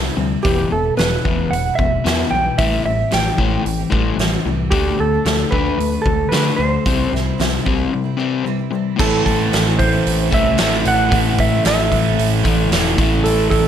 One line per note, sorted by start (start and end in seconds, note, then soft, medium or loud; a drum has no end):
0.00 0.16 C3 medium
0.00 0.15 G3 medium
0.00 0.17 E4 soft
0.05 0.17 G3 soft
0.05 0.17 C4 soft
0.17 0.35 D2 medium
0.17 0.42 C3 soft
0.17 0.42 E3 medium
0.17 0.42 G3 medium
0.17 0.43 C4 medium
0.17 0.43 E4 medium
0.42 0.63 E1 medium
0.42 0.57 E2 medium
0.42 0.57 B2 medium
0.42 0.57 E3 medium
0.42 0.56 G3 medium
0.42 0.56 B3 medium
0.42 0.55 E4 medium
0.42 0.71 G4 medium
0.42 kick loud
0.42 open hi-hat soft
0.56 0.68 E3 soft
0.56 0.69 G3 soft
0.56 0.71 B3 soft
0.56 0.71 E4 soft
0.70 0.89 E1 medium
0.70 0.95 E2 medium
0.70 0.96 B2 medium
0.70 0.83 E3 soft
0.70 0.83 G3 soft
0.70 0.82 B3 soft
0.70 0.81 E4 medium
0.70 0.97 A4 medium
0.82 0.96 E3 soft
0.82 0.96 G3 soft
0.82 0.97 B3 soft
0.82 0.97 E4 soft
0.97 1.16 E1 medium
0.97 1.24 E2 medium
0.97 1.24 B2 medium
0.97 1.23 E3 medium
0.97 1.23 G3 medium
0.97 1.24 B3 medium
0.97 1.25 E4 medium
0.97 1.53 B4 medium
0.97 snare medium
0.97 open hi-hat soft
1.24 1.43 E1 medium
1.24 1.50 E2 medium
1.24 1.50 B2 medium
1.24 1.38 E3 soft
1.24 1.38 G3 medium
1.24 1.37 B3 soft
1.24 1.36 E4 soft
1.24 kick medium
1.38 1.66 E3 soft
1.38 1.65 G3 soft
1.38 1.64 B3 soft
1.38 1.64 E4 soft
1.51 1.69 E1 medium
1.51 1.77 E2 medium
1.51 1.77 B2 medium
1.51 1.79 F#5 medium
1.51 open hi-hat soft
1.65 1.77 E3 soft
1.65 1.78 G3 soft
1.65 1.79 B3 soft
1.65 1.78 E4 soft
1.75 2.03 E2 medium
1.75 2.05 E3 medium
1.75 2.32 E5 medium
1.75 kick medium
1.79 1.97 E1 medium
1.79 2.03 B2 medium
1.79 2.06 G3 soft
1.79 2.06 B3 soft
1.79 2.06 E4 soft
2.05 2.23 E2 medium
2.05 2.19 E2 medium
2.05 2.19 B2 medium
2.05 2.19 E3 medium
2.05 2.20 G3 medium
2.05 2.20 B3 medium
2.05 2.19 E4 medium
2.05 snare loud
2.05 open hi-hat soft
2.20 2.31 E3 soft
2.20 2.32 G3 soft
2.20 2.33 B3 soft
2.20 2.33 E4 soft
2.31 2.50 B1 medium
2.31 2.57 E2 soft
2.31 2.59 E3 medium
2.31 2.59 G3 medium
2.31 2.60 B3 medium
2.31 2.59 G5 loud
2.35 2.57 B2 medium
2.35 2.60 E4 medium
2.58 2.76 A1 medium
2.58 2.73 A2 medium
2.58 2.73 E3 medium
2.58 2.73 G3 medium
2.58 2.84 A3 medium
2.58 2.73 C4 medium
2.58 2.71 G4 medium
2.58 2.84 E5 medium
2.58 kick loud
2.58 open hi-hat soft
2.72 2.85 G3 soft
2.72 2.86 C4 soft
2.72 2.86 G4 soft
2.84 3.03 A1 medium
2.84 3.09 A2 medium
2.84 2.99 E3 soft
2.84 2.99 G3 soft
2.84 2.99 C4 medium
2.84 3.13 E5 medium
2.89 2.97 G4 medium
2.99 3.12 G3 soft
2.99 3.12 C4 soft
2.99 3.12 G4 medium
3.11 3.30 A1 medium
3.11 3.39 A2 medium
3.11 3.37 E3 medium
3.11 3.38 G3 medium
3.11 3.38 C4 medium
3.11 3.40 G4 medium
3.11 4.42 G5 medium
3.11 snare medium
3.11 open hi-hat soft
3.38 3.56 A1 medium
3.38 3.63 A2 medium
3.38 3.52 E3 soft
3.38 3.52 G3 medium
3.38 3.64 A3 medium
3.38 3.51 C4 medium
3.38 3.50 G4 medium
3.38 kick medium
3.51 3.79 G3 soft
3.51 3.77 C4 soft
3.51 3.76 G4 medium
3.64 3.83 A1 medium
3.64 3.89 A2 medium
3.64 3.89 E3 medium
3.64 open hi-hat soft
3.77 3.90 G3 soft
3.77 3.91 C4 soft
3.77 3.92 G4 medium
3.90 4.10 A1 medium
3.90 4.16 A2 medium
3.90 4.18 E3 medium
3.90 4.19 G3 medium
3.90 4.17 A3 medium
3.90 4.19 C4 medium
3.90 4.20 G4 medium
3.90 kick medium
4.18 4.36 A1 medium
4.18 4.32 A2 medium
4.18 4.32 E3 medium
4.18 4.33 G3 medium
4.18 4.33 C4 medium
4.18 4.31 G4 medium
4.18 snare medium
4.18 open hi-hat soft
4.32 4.45 G3 soft
4.32 4.46 C4 soft
4.32 4.46 G4 soft
4.45 4.72 C2 medium
4.45 4.70 A2 medium
4.45 4.71 E3 medium
4.45 4.71 G3 medium
4.45 4.72 C4 medium
4.45 4.73 G4 medium
4.70 4.90 D2 medium
4.70 4.85 D3 medium
4.70 4.86 A3 medium
4.70 4.85 D4 medium
4.70 4.84 F#4 medium
4.70 4.99 G4 medium
4.70 kick loud
4.70 open hi-hat soft
4.85 4.98 A3 soft
4.85 4.99 D4 soft
4.85 4.99 F#4 soft
4.98 5.17 D2 medium
4.98 5.12 D3 soft
4.98 5.13 A3 medium
4.98 5.13 D4 soft
4.98 5.11 F#4 medium
4.98 5.55 A4 medium
5.12 5.25 A3 soft
5.12 5.26 D4 soft
5.12 5.26 F#4 soft
5.25 5.43 D2 medium
5.25 5.52 D3 medium
5.25 5.53 A3 medium
5.25 5.53 D4 medium
5.25 5.54 F#4 medium
5.25 snare medium
5.25 open hi-hat soft
5.51 5.70 D2 medium
5.51 5.66 D3 soft
5.51 5.67 A3 medium
5.51 5.66 D4 soft
5.51 6.07 B4 medium
5.51 kick medium
5.55 5.65 F#4 soft
5.66 5.94 A3 soft
5.66 5.92 D4 soft
5.66 5.91 F#4 soft
5.78 5.96 D2 medium
5.78 6.03 D3 medium
5.78 6.03 A3 medium
5.78 open hi-hat soft
5.92 6.05 A3 soft
5.92 6.06 D4 soft
5.92 6.06 F#4 soft
6.02 6.24 D2 medium
6.02 6.31 A4 medium
6.02 kick medium
6.06 6.31 D3 medium
6.06 6.32 A3 medium
6.06 6.31 D4 medium
6.06 6.32 F#4 medium
6.29 6.50 D3 medium
6.29 6.46 D3 medium
6.29 6.44 A3 medium
6.29 6.44 D4 medium
6.29 6.56 B4 medium
6.29 open hi-hat soft
6.33 6.42 F#4 medium
6.33 snare medium
6.43 6.57 A3 soft
6.43 6.58 D4 soft
6.43 6.58 F#4 soft
6.56 6.77 D2 medium
6.56 6.85 D3 medium
6.56 6.85 A3 medium
6.56 6.86 D4 medium
6.56 6.87 F#4 medium
6.56 8.41 C5 medium
6.85 7.04 C2 medium
6.85 7.12 C3 medium
6.85 7.10 E3 medium
6.85 7.12 G3 medium
6.85 7.12 C4 medium
6.85 7.13 E4 medium
6.85 kick loud
6.85 open hi-hat soft
7.11 7.30 C2 medium
7.11 7.37 C3 medium
7.11 7.25 E3 soft
7.11 7.26 G3 medium
7.11 7.25 C4 medium
7.11 7.24 E4 soft
7.15 snare soft
7.25 7.38 G3 soft
7.25 7.38 C4 soft
7.25 7.39 E4 medium
7.38 7.57 C2 medium
7.38 7.66 C3 medium
7.38 7.64 E3 medium
7.38 7.65 G3 medium
7.38 7.66 C4 medium
7.38 7.67 E4 medium
7.38 snare medium
7.38 open hi-hat soft
7.65 7.85 C2 medium
7.65 7.91 C3 medium
7.65 7.79 E3 soft
7.65 7.79 G3 medium
7.65 7.78 C4 medium
7.65 7.77 E4 medium
7.65 kick medium
7.78 8.05 G3 soft
7.78 8.04 C4 soft
7.78 8.03 E4 soft
7.93 8.16 C3 medium
7.93 8.17 G3 medium
8.04 8.18 G3 soft
8.04 8.19 C4 soft
8.04 8.18 E4 medium
8.17 8.43 C3 medium
8.17 8.45 E3 medium
8.17 8.46 G3 medium
8.17 8.46 C4 medium
8.17 8.46 E4 medium
8.46 8.59 C3 medium
8.46 8.60 E3 medium
8.46 8.60 G3 medium
8.46 8.60 C4 medium
8.46 8.58 E4 medium
8.59 8.72 G3 soft
8.59 8.74 C4 soft
8.59 8.73 E4 medium
8.71 8.96 C3 soft
8.71 8.99 E3 medium
8.71 9.00 G3 medium
8.75 9.00 C4 medium
8.75 9.00 E4 medium
8.99 9.23 A1 medium
8.99 9.26 A2 medium
8.99 9.23 E3 medium
8.99 9.25 A3 medium
8.99 9.25 C4 medium
8.99 9.25 E4 medium
8.99 9.24 A4 medium
8.99 kick loud
8.99 crash loud
9.24 9.50 A1 medium
9.24 9.39 E3 soft
9.24 9.39 A3 medium
9.24 9.38 C4 medium
9.24 9.37 E4 soft
9.24 9.81 A4 medium
9.24 kick medium
9.24 open hi-hat soft
9.38 9.51 A3 soft
9.38 9.51 C4 soft
9.38 9.51 E4 soft
9.51 9.99 A1 medium
9.51 9.79 A2 medium
9.51 9.76 E3 medium
9.51 9.77 A3 medium
9.51 9.77 C4 medium
9.51 9.78 E4 medium
9.51 snare medium
9.51 open hi-hat medium
9.77 9.91 E3 soft
9.77 9.92 A3 soft
9.77 9.92 C4 medium
9.77 9.90 E4 medium
9.77 10.29 C5 medium
9.77 kick medium
9.77 open hi-hat soft
9.81 10.58 A2 medium
9.81 10.60 E3 medium
9.91 10.04 A3 soft
9.91 10.05 C4 soft
9.91 10.05 E4 soft
10.05 10.29 A1 medium
10.05 10.19 E3 medium
10.05 10.19 A3 soft
10.05 10.20 C4 medium
10.05 10.17 E4 medium
10.05 open hi-hat medium
10.19 10.46 A3 soft
10.19 10.45 C4 soft
10.19 10.43 E4 soft
10.31 10.56 C2 medium
10.31 10.56 A2 medium
10.31 10.59 E3 medium
10.31 10.60 A3 medium
10.31 10.87 E5 medium
10.31 kick medium
10.31 open hi-hat soft
10.44 10.56 A3 soft
10.44 10.57 C4 soft
10.44 10.57 E4 soft
10.57 10.83 A1 medium
10.57 10.85 A2 medium
10.57 10.83 E3 medium
10.57 10.84 A3 medium
10.57 10.85 C4 medium
10.57 10.86 E4 medium
10.57 snare loud
10.57 open hi-hat medium
10.85 11.09 A1 medium
10.85 10.99 E3 medium
10.85 10.99 A3 medium
10.85 10.98 C4 medium
10.85 10.97 E4 medium
10.85 11.42 F#5 medium
10.85 open hi-hat medium
10.98 11.11 A3 soft
10.98 11.12 C4 soft
10.98 11.12 E4 soft
11.12 11.59 A1 medium
11.12 11.39 A2 medium
11.12 11.37 E3 medium
11.12 11.38 A3 medium
11.12 11.39 C4 medium
11.12 11.39 E4 medium
11.12 kick loud
11.12 open hi-hat medium
11.38 11.52 E3 soft
11.38 11.52 A3 medium
11.38 11.51 C4 medium
11.38 11.50 E4 medium
11.38 11.66 E5 medium
11.38 kick medium
11.38 open hi-hat soft
11.51 11.64 A3 soft
11.51 11.65 C4 soft
11.51 11.65 E4 medium
11.64 11.89 A1 medium
11.64 11.92 A2 medium
11.64 11.89 E3 medium
11.64 11.90 A3 medium
11.64 11.91 C4 medium
11.64 11.91 E4 medium
11.64 12.54 E5 medium
11.64 snare loud
11.64 open hi-hat medium
11.90 12.15 A1 medium
11.90 12.05 E3 medium
11.90 12.05 A3 medium
11.90 12.05 C4 medium
11.90 12.03 E4 soft
11.90 kick medium
11.90 open hi-hat soft
11.95 12.71 A2 medium
12.04 12.17 A3 soft
12.04 12.17 C4 soft
12.04 12.18 E4 soft
12.17 12.42 A1 medium
12.17 12.32 E3 medium
12.17 12.32 A3 soft
12.17 12.31 C4 medium
12.17 12.31 E4 medium
12.17 open hi-hat medium
12.32 12.60 A3 soft
12.32 12.59 C4 medium
12.32 12.57 E4 medium
12.44 12.68 A1 medium
12.44 12.69 A2 medium
12.44 12.71 E3 medium
12.44 12.70 A3 medium
12.44 kick medium
12.44 open hi-hat medium
12.54 12.96 D5 medium
12.58 12.71 A3 soft
12.58 12.72 C4 medium
12.58 12.72 E4 medium
12.71 12.95 E1 medium
12.71 12.99 A2 medium
12.71 12.97 E3 medium
12.71 12.98 A3 medium
12.71 12.99 C4 medium
12.71 13.00 E4 medium
12.71 snare medium
12.71 open hi-hat medium
12.96 13.22 A1 medium
12.96 13.68 A2 medium
12.96 13.12 E3 medium
12.96 13.12 A3 medium
12.96 13.12 C#4 medium
12.96 kick loud
12.96 open hi-hat soft
13.01 13.10 E4 medium
13.11 13.24 A3 soft
13.11 13.25 C#4 soft
13.11 13.25 E4 soft
13.24 13.49 A1 medium
13.24 13.52 A2 medium
13.24 13.49 E3 medium
13.24 13.51 A3 medium
13.24 13.52 C#4 medium
13.24 13.52 E4 medium
13.24 13.49 A4 medium
13.24 open hi-hat medium
13.50 13.68 A1 medium
13.50 13.65 E3 medium
13.50 13.66 A3 medium
13.50 13.66 C#4 medium
13.50 13.65 E4 medium
13.50 13.68 A4 medium
13.50 kick medium
13.50 open hi-hat soft